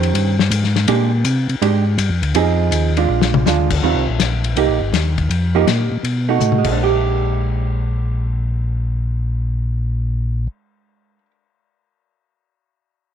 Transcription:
Already playing: tonewheel organ F2, hollow-body jazz guitar D#3 C#4 G4 C5
0.03 ride
0.14 tonewheel organ G2, ride
0.39 snare
0.51 tonewheel organ G#2, hi-hat pedal, ride
0.64 snare
0.76 snare, ride
0.88 tonewheel organ A#2, hollow-body jazz guitar G#3 D4 G4, ride
1.25 tonewheel organ C3, hi-hat pedal, ride
1.49 tonewheel organ C3, ride
1.62 tonewheel organ G#2, hollow-body jazz guitar G#3 D4 G4, ride
1.98 tonewheel organ G2, hi-hat pedal, ride
2.09 tonewheel organ F2
2.22 tonewheel organ D2, ride
2.35 tonewheel organ F2, hollow-body jazz guitar F3 C4 D#4 G#4, ride
2.71 tonewheel organ D#2, hi-hat pedal, ride
2.97 hollow-body jazz guitar G#3 D4 F4, ride
3.09 tonewheel organ A#1
3.22 snare
3.34 mid tom
3.46 tonewheel organ D2, hollow-body jazz guitar G#3 D4 F4, snare, hi-hat pedal
3.70 kick, crash
3.83 tonewheel organ D#2, hollow-body jazz guitar D#3 G3 C4 F4
3.95 tonewheel organ C2
4.08 tonewheel organ A#1
4.20 tonewheel organ A#1, snare, hi-hat pedal, ride
4.44 ride
4.56 tonewheel organ C2, hollow-body jazz guitar A#3 D#4 G4, ride
4.69 tonewheel organ A#1
4.80 tonewheel organ G1
4.93 tonewheel organ D#2, snare, hi-hat pedal, ride
5.18 kick, ride
5.30 tonewheel organ F2, ride
5.55 hollow-body jazz guitar F3 A#3 D#4 G4
5.67 tonewheel organ A#2, snare, hi-hat pedal, ride
5.92 tonewheel organ A#2
6.03 tonewheel organ B2, ride
6.29 hollow-body jazz guitar A3 D#4 F#4
6.40 tonewheel organ A2, hi-hat pedal, mid tom
6.52 mid tom
6.58 hollow-body jazz guitar G#3
6.64 tonewheel organ A#1, kick, crash
6.72 hollow-body jazz guitar D4
6.83 hollow-body jazz guitar G4

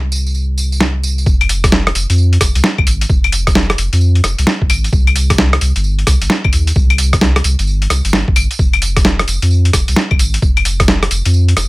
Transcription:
Already playing: sub bass C2
0.12 tambourine
0.26 tambourine
0.35 tambourine
0.58 tambourine
0.72 tambourine
0.81 snare
1.03 tambourine
1.18 tambourine
1.26 sub bass F1, kick, tambourine
1.41 closed hi-hat, claves
1.49 open hi-hat, tambourine
1.64 kick, cross-stick, closed hi-hat, tambourine
1.72 snare, tambourine
1.87 cross-stick, closed hi-hat
1.95 sub bass F1, open hi-hat, tambourine
2.10 sub bass F2, closed hi-hat, tambourine
2.18 tambourine
2.33 closed hi-hat
2.41 sub bass F1, kick, cross-stick, open hi-hat, tambourine
2.55 sub bass C2, closed hi-hat, tambourine
2.64 snare, tambourine
2.78 sub bass C2, kick, claves
2.87 sub bass G#1, open hi-hat, tambourine
3.01 closed hi-hat, tambourine
3.10 sub bass F1, kick, tambourine
3.24 closed hi-hat, claves
3.32 open hi-hat, tambourine
3.47 kick, cross-stick, closed hi-hat, tambourine
3.55 snare, tambourine
3.70 cross-stick, closed hi-hat
3.78 sub bass F1, open hi-hat, tambourine
3.93 sub bass F2, closed hi-hat, tambourine
4.01 tambourine
4.15 closed hi-hat
4.24 sub bass F1, cross-stick, open hi-hat, tambourine
4.38 sub bass C2, closed hi-hat, tambourine
4.47 snare, tambourine
4.62 sub bass C2, kick
4.70 sub bass G#1, open hi-hat, tambourine, claves
4.84 closed hi-hat, tambourine
4.93 sub bass C2, kick, tambourine
5.07 closed hi-hat, claves
5.16 open hi-hat, tambourine
5.30 kick, cross-stick, closed hi-hat, tambourine
5.38 snare, tambourine
5.53 cross-stick, closed hi-hat
5.61 sub bass C2, open hi-hat, tambourine
5.76 sub bass G1, closed hi-hat, tambourine
5.84 tambourine
5.99 closed hi-hat
6.07 sub bass C2, kick, cross-stick, open hi-hat, tambourine
6.22 sub bass G1, closed hi-hat, tambourine
6.30 snare, tambourine
6.44 sub bass G1, kick, claves
6.53 sub bass D#2, open hi-hat, tambourine
6.67 closed hi-hat, tambourine
6.76 sub bass C2, kick, tambourine
6.90 closed hi-hat, claves
6.98 open hi-hat, tambourine
7.13 kick, cross-stick, closed hi-hat, tambourine
7.21 snare, tambourine
7.36 cross-stick, closed hi-hat
7.44 sub bass C2, open hi-hat, tambourine
7.59 sub bass G1, closed hi-hat, tambourine
7.67 tambourine
7.82 closed hi-hat
7.90 sub bass C2, cross-stick, open hi-hat, tambourine
8.05 sub bass G1, closed hi-hat, tambourine
8.13 sub bass G1, snare, tambourine
8.28 sub bass A#1, kick
8.36 sub bass G1, open hi-hat, tambourine, claves
8.51 closed hi-hat, tambourine
8.59 sub bass F1, kick, tambourine
8.73 closed hi-hat, claves
8.82 open hi-hat, tambourine
8.96 kick, cross-stick, closed hi-hat, tambourine
9.05 snare, tambourine
9.19 cross-stick, closed hi-hat
9.28 sub bass F1, open hi-hat, tambourine
9.42 sub bass F2, closed hi-hat, tambourine
9.51 tambourine
9.65 closed hi-hat
9.73 sub bass F1, kick, cross-stick, open hi-hat, tambourine
9.88 sub bass C2, closed hi-hat, tambourine
9.96 snare, tambourine
10.11 sub bass C2, kick, claves
10.19 sub bass G#1, open hi-hat, tambourine
10.34 closed hi-hat, tambourine
10.42 sub bass F1, kick, tambourine
10.57 closed hi-hat, claves
10.65 open hi-hat, tambourine
10.80 kick, cross-stick, closed hi-hat, tambourine
10.88 snare, tambourine
11.03 cross-stick, closed hi-hat
11.11 sub bass F1, open hi-hat, tambourine
11.25 sub bass F2, closed hi-hat, tambourine
11.34 tambourine
11.48 closed hi-hat
11.57 sub bass F1, cross-stick, open hi-hat, tambourine

